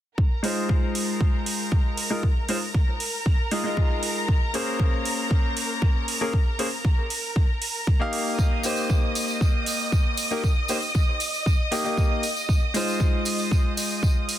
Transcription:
0.18 A#4 A#5, kick
0.43 G#3 D#4 F4 C5, open hi-hat
0.69 kick
0.95 open hi-hat
1.21 kick
1.46 open hi-hat
1.72 kick
1.97 open hi-hat
2.10 G#3 D#4 F4 A#4
2.23 kick
2.49 G#3 D#4 F4 C5, open hi-hat
2.74 kick
3.00 open hi-hat
3.26 kick
3.51 G#3 D#4 F4 D#5, open hi-hat
3.64 G#3 D#4 F4 D#5
3.77 kick
4.03 open hi-hat
4.28 kick
4.54 A#3 C#4 G#4 C5, open hi-hat
4.80 kick
5.05 open hi-hat
5.31 kick
5.57 open hi-hat
5.82 kick
6.08 open hi-hat
6.21 A#3 C#4 G#4 A#4
6.33 kick
6.59 A#3 C#4 G#4 C5, open hi-hat
6.85 kick
7.10 open hi-hat
7.36 kick
7.62 open hi-hat
7.87 kick
7.99 A#3 D#4 G4 F5
8.13 open hi-hat
8.38 D#5 D#6, kick, tambourine
8.63 A#3 D#4 G4 C5, open hi-hat, tambourine
8.76 tambourine
8.90 kick, tambourine
9.15 open hi-hat, tambourine
9.28 tambourine
9.41 kick, tambourine
9.66 open hi-hat, tambourine
9.79 tambourine
9.92 kick, tambourine
10.17 open hi-hat, tambourine
10.31 A#3 D#4 G4 A#4, tambourine
10.44 kick, tambourine
10.68 A#3 D#4 G4 C5, open hi-hat, tambourine
10.82 tambourine
10.95 kick, tambourine
11.20 open hi-hat, tambourine
11.34 tambourine
11.46 kick, tambourine
11.71 A#3 D#4 G4 D#5, open hi-hat, tambourine
11.84 A#3 D#4 G4 D#5, tambourine
11.97 kick, tambourine
12.23 open hi-hat, tambourine
12.36 tambourine
12.49 kick, tambourine
12.74 G#3 D#4 F4 C5, open hi-hat, tambourine
12.88 tambourine
13.00 kick, tambourine
13.25 open hi-hat, tambourine
13.38 tambourine
13.51 kick, tambourine
13.77 open hi-hat, tambourine
13.90 tambourine
14.03 kick, tambourine
14.29 open hi-hat, tambourine

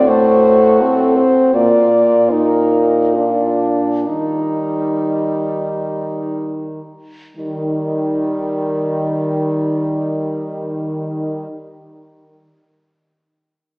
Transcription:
Already playing: A2 C4 F#4
0.08 A3 C5
0.82 C4 A4
1.17 C5
1.53 A#2 A#3 F4 D5
2.31 D#4 A#4
3.14 D4 F4
4.07 D#3 G3 D#4
7.37 D#3 G3 D#4

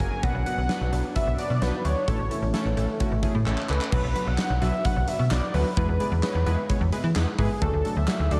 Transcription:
Already playing: F#3 C#4 A#4
0.00 F#1 A#3 C#4 F#4 G#4 G#5, kick, closed hi-hat
0.23 B1 B3 D4 F#4 B4 F#5, kick, closed hi-hat
0.35 B1
0.46 B3 D4 F#4 B4 F#5, closed hi-hat
0.58 B1
0.69 B3 D4 F#4 B4, snare, closed hi-hat
0.81 B1
0.92 B1 B3 D4 F#4 B4, closed hi-hat
1.15 B3 D4 F#4 B4 E5, kick, closed hi-hat
1.27 B1
1.38 B3 D4 F#4 B4 D5, closed hi-hat
1.50 B2
1.62 B1 B3 D4 F#4 B4, snare, closed hi-hat
1.85 D2 B3 D4 F#4 C#5 D5, closed hi-hat
2.08 A1 E3 A3 C#4 E4 A4, kick, closed hi-hat
2.19 A1
2.31 A3 C#4 E4 A4, closed hi-hat
2.42 A1
2.54 A3 C#4 E4 A4, snare, closed hi-hat
2.65 A1
2.77 A1 A3 C#4 E4 A4, closed hi-hat
3.00 A3 C#4 E4 F#4, kick, closed hi-hat
3.12 A1
3.23 A3 C#4 E4 G#4, kick, closed hi-hat
3.35 A2
3.46 A1 A3 C#4 E4 A4, clap
3.58 clap
3.69 C#2 A3 C#4 E4 A4 B4, clap
3.81 clap
3.92 B1 F#3 B3 D4 F#4 B4, kick, crash
4.04 B1
4.15 F#3 B3 D4 F#4 B4, closed hi-hat
4.27 B1 F#5
4.38 F#3 B3 D4 F#4 B4, snare, clap, closed hi-hat
4.50 B1
4.62 B1 F#3 B3 D4 F#4 B4 E5, closed hi-hat
4.84 F#3 B3 D4 F#4 B4 F#5, kick, closed hi-hat
4.96 B1
5.08 F#3 B3 D4 F#4 B4 E5, closed hi-hat
5.19 B2
5.31 B1 F#3 B3 D4 F#4 B4 D5, snare, clap, closed hi-hat
5.54 D2 F#3 B3 D4 F#4 B4, open hi-hat
5.77 E2 G#3 B3 E4 G#4 B4, kick, closed hi-hat
5.88 E2
6.00 G#3 B3 E4 G#4 D5, closed hi-hat
6.12 E2
6.23 G#3 B3 E4 G#4 B4 C#5, snare, clap, closed hi-hat
6.35 E2
6.46 E2 G#3 B3 E4 G#4 B4, closed hi-hat
6.69 G#3 B3 E4 G#4 C#5, kick, closed hi-hat
6.81 E2
6.92 G#3 B3 E4 G#4 B4, closed hi-hat
7.04 E3
7.15 E2 G#3 B3 E4 G#4 B4, snare, clap, closed hi-hat
7.39 G#2 G#3 B3 E4 G#4 B4, kick, open hi-hat
7.62 D2 F#3 A3 D4 F#4 A4, kick, closed hi-hat
7.73 D2
7.85 F#3 A3 D4 F#4 A4, closed hi-hat
7.96 D2 E5
8.08 F#3 A3 D4 F#4 G#4, snare, clap, closed hi-hat
8.20 D2
8.31 D2 F#3 A3 D4 F#4 A4 D5, closed hi-hat

